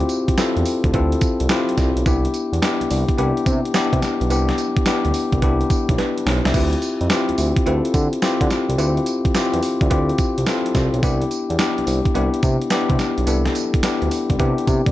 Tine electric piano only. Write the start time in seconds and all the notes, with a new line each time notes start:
Already playing: C4 E4 F4 F#4 G4
0.38 C4 E4 F4 A4
0.94 C4 E4 F4 A4
1.50 C4 E4 F4 G4
2.06 B3 D4 E4 G4
2.62 B3 D4 E4 G4
3.18 B3 D4 E4 G4
3.75 B3 D4 E4 G4
4.31 B3 D4 E4 G4
4.86 B3 D4 E4 G4
5.42 B3 D4 E4 G4
5.99 D4 B4
6.27 E4 C5
6.46 G4 E5
6.55 C4 E4 F4 G4
7.10 C4 E4 F4 G4
7.66 C4 E4 F4 A4
8.22 C4 E4 F4 G4
8.78 C4 E4 F4 G4
9.35 C4 E4 F4 G4
9.90 C4 E4 F4 G4
10.47 C4 E4 F4 A4
11.03 B3 D4 E4 G4
11.59 B3 D4 E4 G4
12.15 B3 D4 E4 G4
12.71 B3 D4 E4 G4
13.26 B3 D4 E4 A4
13.83 B3 D4 E4 G4
14.39 B3 D4 E4 G4